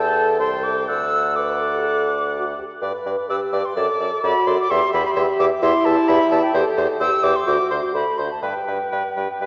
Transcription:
0.00 0.41 E2 medium
0.00 0.39 A4 medium
0.00 0.86 A4 loud
0.00 0.39 G5 medium
0.00 0.39 A5 loud
0.40 0.87 C2 medium
0.40 0.87 A4 medium
0.40 0.89 G5 medium
0.40 0.65 C6 loud
0.63 0.87 D6 loud
0.88 2.54 D2 medium
0.88 1.31 A4 medium
0.88 1.23 A4 medium
0.88 1.36 F#5 medium
0.88 1.37 E6 loud
1.36 2.55 A4 medium
1.36 1.63 B4 medium
1.36 2.55 F#5 medium
1.36 2.57 D6 medium
1.62 1.73 A4 medium
1.74 1.88 G4 medium
1.86 2.20 A4 medium
2.34 2.45 F#4 medium
2.58 2.64 G4 medium
2.71 2.76 A4 medium
2.81 2.92 G2 medium
2.81 2.92 B4 medium
2.81 3.31 B4 medium
2.81 2.92 D5 medium
3.05 3.16 G2 medium
3.05 3.16 B4 medium
3.05 3.16 D5 soft
3.29 3.40 G2 medium
3.29 3.76 G4 medium
3.29 3.40 B4 medium
3.29 3.40 D5 medium
3.29 3.36 E6 loud
3.52 3.63 G2 medium
3.52 3.63 B4 medium
3.52 3.63 D5 medium
3.52 3.67 D6 medium
3.66 3.77 C6 medium
3.76 3.87 F#2 medium
3.76 4.23 A4 medium
3.76 3.87 A4 medium
3.76 3.87 D5 medium
3.76 4.23 D6 loud
4.00 4.11 F#2 medium
4.00 4.11 A4 medium
4.00 4.11 D5 medium
4.23 4.34 F#2 medium
4.23 4.69 F#4 loud
4.23 4.34 A4 medium
4.23 4.34 D5 medium
4.23 4.48 B5 loud
4.47 4.57 F#2 medium
4.47 4.57 A4 medium
4.47 4.57 D5 medium
4.47 4.59 C6 medium
4.60 4.72 D6 loud
4.70 4.81 E2 medium
4.70 4.80 G4 medium
4.70 5.64 G4 medium
4.70 4.80 E5 medium
4.70 4.93 C6 loud
4.93 5.04 E2 medium
4.93 5.04 G4 medium
4.93 5.04 E5 medium
4.93 5.05 B5 loud
5.06 5.11 B5 loud
5.16 5.27 E2 medium
5.16 5.27 G4 medium
5.16 5.27 E5 medium
5.16 5.22 C6 loud
5.39 5.50 E2 loud
5.39 5.50 G4 medium
5.39 5.50 E5 medium
5.39 5.46 D6 loud
5.62 5.73 E2 loud
5.62 6.54 E4 loud
5.62 5.73 G4 medium
5.62 5.73 E5 medium
5.62 5.87 C6 loud
5.85 5.96 E2 medium
5.85 5.96 G4 medium
5.85 5.96 E5 medium
5.85 6.10 A5 loud
6.08 6.19 E2 loud
6.08 6.19 G4 medium
6.08 6.18 E5 medium
6.08 6.31 B5 loud
6.31 6.42 E2 medium
6.31 6.42 G4 medium
6.31 6.42 E5 medium
6.31 6.42 A5 loud
6.43 6.54 G5 loud
6.54 6.64 E2 loud
6.54 6.65 G4 medium
6.54 7.02 A4 medium
6.54 6.65 C5 medium
6.77 6.88 E2 loud
6.77 6.88 G4 medium
6.77 6.88 C5 medium
7.00 7.11 E2 medium
7.00 7.46 G4 loud
7.00 7.12 G4 medium
7.00 7.11 C5 medium
7.00 7.25 E6 loud
7.23 7.34 E2 loud
7.23 7.35 G4 medium
7.23 7.34 C5 medium
7.23 7.37 D6 loud
7.36 7.49 C6 loud
7.47 7.57 D2 medium
7.47 7.96 F#4 medium
7.47 7.58 F#4 medium
7.47 7.58 C5 medium
7.47 7.70 D6 loud
7.70 7.81 D2 medium
7.70 7.81 F#4 medium
7.70 7.81 C5 medium
7.70 7.76 C6 medium
7.94 8.05 D2 medium
7.94 8.05 F#4 medium
7.94 8.29 A4 medium
7.94 8.05 C5 medium
7.94 8.19 B5 loud
8.18 8.29 D2 medium
8.18 8.29 F#4 medium
8.18 8.30 C5 medium
8.18 8.31 C6 medium
8.31 8.43 A5 medium
8.42 8.54 G2 medium
8.42 8.54 G4 medium
8.42 8.54 B4 medium
8.42 9.46 B4 medium
8.42 9.46 G5 medium
8.67 8.79 G2 medium
8.67 8.79 G4 soft
8.67 8.79 B4 soft
8.92 9.03 G2 medium
8.92 9.03 G4 medium
8.92 9.03 B4 medium
9.17 9.28 G2 medium
9.17 9.28 G4 soft
9.17 9.28 B4 soft
9.41 9.46 G2 medium
9.41 9.46 G4 medium
9.41 9.46 B4 medium

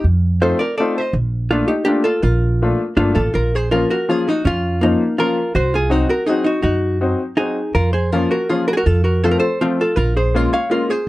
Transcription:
0.04 0.51 F2 medium
0.41 0.59 A3 medium
0.41 0.59 C4 medium
0.41 0.59 D#4 medium
0.41 0.59 F4 medium
0.41 0.59 A4 medium
0.41 0.60 C5 medium
0.59 0.76 A#4 medium
0.59 0.76 D5 medium
0.78 0.96 A3 medium
0.78 0.97 C4 medium
0.78 0.97 D#4 medium
0.78 0.97 F4 medium
0.78 0.94 A4 medium
0.78 0.96 D5 medium
0.98 1.13 C5 medium
0.98 1.15 D#5 medium
1.13 1.61 A#1 medium
1.51 1.68 A3 medium
1.51 1.68 A#3 medium
1.51 1.68 D4 medium
1.51 1.67 F4 medium
1.51 1.68 F4 medium
1.68 1.85 D#4 medium
1.68 1.84 G4 medium
1.85 2.05 A3 medium
1.85 2.05 A#3 medium
1.85 2.03 D4 medium
1.85 2.06 D4 medium
1.85 2.06 F4 medium
1.85 2.04 G4 loud
2.04 2.22 F4 medium
2.04 2.22 A4 medium
2.22 2.71 A#1 medium
2.22 2.93 F4 medium
2.22 2.97 A#4 medium
2.62 2.80 A3 medium
2.62 2.79 A#3 medium
2.62 2.80 D4 medium
2.62 2.80 F4 medium
2.97 3.14 G1 medium
2.97 3.16 A3 medium
2.97 3.17 A#3 medium
2.97 3.14 D4 medium
2.97 3.17 D4 medium
2.97 3.14 F4 medium
2.97 3.16 F4 medium
3.15 3.32 A1 medium
3.15 3.32 F4 medium
3.15 3.35 A4 medium
3.34 3.83 A#1 medium
3.34 3.51 F4 medium
3.34 3.56 A#4 medium
3.55 3.71 G#4 medium
3.55 3.72 C5 medium
3.71 3.90 F3 medium
3.71 3.90 A#3 medium
3.71 3.91 C#4 medium
3.71 3.89 F4 medium
3.71 3.91 F4 medium
3.71 3.90 A#4 medium
3.90 4.07 F#4 medium
3.90 4.11 A#4 medium
4.09 4.27 F3 medium
4.09 4.27 A#3 medium
4.09 4.27 C#4 medium
4.09 4.27 F4 medium
4.09 4.26 F4 medium
4.09 4.29 G#4 medium
4.29 4.45 D#4 medium
4.29 4.47 F#4 medium
4.45 4.92 F2 medium
4.45 4.79 C#4 medium
4.45 4.84 F4 loud
4.81 5.00 F3 medium
4.81 5.15 A#3 medium
4.81 5.01 A#3 medium
4.81 5.01 C#4 medium
4.81 5.20 D#4 medium
4.81 5.01 F4 medium
5.18 5.36 F3 medium
5.18 5.36 A#3 medium
5.18 5.37 C#4 medium
5.18 5.52 F4 medium
5.18 5.37 F4 medium
5.18 5.55 A#4 loud
5.55 6.02 C2 medium
5.55 5.72 F#4 medium
5.55 5.74 C5 medium
5.74 5.90 F4 medium
5.74 5.92 G#4 medium
5.90 6.09 F#3 medium
5.90 6.09 C4 medium
5.90 6.09 D#4 medium
5.90 6.08 D#4 medium
5.90 6.09 F#4 medium
5.90 6.08 F#4 medium
6.09 6.26 F#4 medium
6.09 6.27 A#4 medium
6.26 6.46 F#3 medium
6.26 6.47 C4 medium
6.26 6.43 D#4 medium
6.26 6.47 D#4 medium
6.26 6.47 F#4 medium
6.26 6.46 G#4 medium
6.44 6.61 D#4 medium
6.44 6.62 F#4 medium
6.62 7.12 F#2 medium
6.62 6.98 D#4 medium
6.62 6.98 F#4 medium
7.01 7.20 F#3 medium
7.01 7.20 C4 medium
7.01 7.20 D#4 medium
7.01 7.20 F#4 medium
7.37 7.57 F#3 medium
7.37 7.57 C4 soft
7.37 7.73 D#4 medium
7.37 7.58 D#4 medium
7.37 7.57 F#4 medium
7.37 7.75 G#4 medium
7.75 8.24 F2 medium
7.75 7.93 F4 medium
7.75 7.93 A#4 medium
7.93 8.12 G#4 soft
7.93 8.12 C5 medium
8.12 8.32 F3 medium
8.12 8.32 A#3 medium
8.12 8.32 C#4 medium
8.12 8.30 F4 medium
8.12 8.32 F4 medium
8.12 8.30 A#4 medium
8.31 8.48 F#4 medium
8.31 8.49 A#4 medium
8.49 8.69 F3 medium
8.49 8.68 A#3 soft
8.49 8.69 C#4 medium
8.49 8.68 F4 medium
8.49 8.67 F4 medium
8.49 8.67 G#4 medium
8.68 8.73 F#4 medium
8.68 8.73 A#4 medium
8.73 8.77 G#4 medium
8.77 8.86 F#4 medium
8.77 8.87 A#4 medium
8.86 9.34 F2 medium
8.86 9.04 F4 medium
8.86 9.04 A4 medium
9.04 9.22 F#4 medium
9.04 9.24 A#4 medium
9.24 9.43 F3 medium
9.24 9.43 A3 medium
9.24 9.43 C4 medium
9.24 9.43 F4 medium
9.24 9.31 A4 medium
9.24 9.31 C5 medium
9.31 9.38 A#4 medium
9.40 9.61 A4 medium
9.40 9.60 C5 medium
9.61 9.79 F3 medium
9.61 9.80 A3 medium
9.61 9.79 C4 medium
9.61 9.80 C4 medium
9.61 9.78 F4 medium
9.61 9.80 F4 medium
9.81 9.96 F4 medium
9.81 9.96 A4 medium
9.96 10.45 A#1 medium
9.96 10.14 F4 medium
9.96 10.16 A#4 loud
10.17 10.33 G#4 medium
10.17 10.37 C5 medium
10.34 10.53 G#3 medium
10.34 10.53 A#3 medium
10.34 10.53 C#4 medium
10.34 10.53 F4 medium
10.34 10.52 F4 medium
10.34 10.53 A#4 medium
10.53 10.70 C#5 medium
10.53 10.72 F5 medium
10.70 10.89 G#3 medium
10.70 10.89 A#3 medium
10.70 10.89 C#4 medium
10.70 10.88 F4 medium
10.70 10.89 F4 medium
10.70 10.91 A#4 medium
10.90 11.07 G#4 medium
10.90 11.09 C5 medium

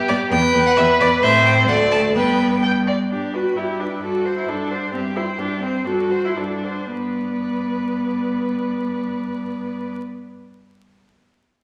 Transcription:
0.00 0.31 G4 medium
0.08 0.17 G2 medium
0.08 0.17 B3 medium
0.08 0.16 D5 loud
0.31 0.39 E2 loud
0.31 0.40 B3 medium
0.31 1.24 B4 loud
0.31 0.65 G5 loud
0.54 0.62 E2 medium
0.54 0.62 B3 medium
0.66 0.71 F#5 loud
0.77 0.85 E2 loud
0.77 0.86 B3 medium
0.77 0.85 E5 loud
0.99 1.08 E2 medium
0.99 1.07 B3 medium
0.99 1.08 D5 loud
1.22 1.69 A2 loud
1.22 1.69 C4 medium
1.22 1.67 C5 loud
1.22 1.45 E5 loud
1.45 1.53 G5 loud
1.67 2.14 D2 medium
1.67 2.16 A3 medium
1.67 2.14 D5 loud
1.67 1.76 F#5 loud
1.91 1.99 A5 loud
2.14 2.88 G2 medium
2.14 2.90 B3 medium
2.14 2.58 B4 medium
2.14 2.62 G5 loud
2.63 2.71 G5 medium
2.87 2.95 D5 medium
3.10 3.51 G2 soft
3.10 3.35 D4 medium
3.10 3.36 G4 soft
3.10 3.36 D5 soft
3.34 3.58 F#4 medium
3.34 3.58 B4 soft
3.34 3.59 G5 soft
3.56 3.97 G2 soft
3.56 3.81 E4 soft
3.56 3.81 G4 soft
3.56 3.82 D5 soft
3.80 4.02 D4 soft
3.80 4.03 B4 soft
3.80 4.03 G5 soft
4.02 4.42 G2 soft
4.02 4.36 F#4 medium
4.02 4.27 A4 soft
4.02 4.27 D5 soft
4.25 4.50 C5 soft
4.25 4.50 F#5 soft
4.38 4.50 E4 medium
4.48 4.88 G2 soft
4.48 4.93 D4 medium
4.48 4.72 A4 soft
4.48 4.72 D5 soft
4.70 4.93 C5 soft
4.70 4.93 F#5 soft
4.93 5.33 G2 soft
4.93 5.02 C4 medium
4.93 5.18 G4 soft
4.93 5.18 E5 soft
5.16 5.24 E4 medium
5.16 5.40 C5 soft
5.16 5.40 G5 soft
5.38 5.81 G2 medium
5.38 5.62 D4 medium
5.38 5.64 G4 soft
5.38 5.63 E5 soft
5.62 5.87 C4 medium
5.62 5.86 C5 soft
5.62 5.85 G5 soft
5.85 6.31 G2 soft
5.85 6.26 F#4 medium
5.85 6.13 A4 soft
5.85 6.11 D5 soft
6.10 6.39 C5 soft
6.10 6.38 F#5 soft
6.25 6.39 E4 medium
6.36 6.86 G2 soft
6.36 6.92 D4 soft
6.36 6.66 A4 soft
6.36 6.65 D5 soft
6.63 6.92 C5 soft
6.63 6.92 F#5 soft
6.92 9.93 G2 soft
6.92 9.93 B3 soft
6.92 9.93 B4 soft
6.92 9.93 D5 soft

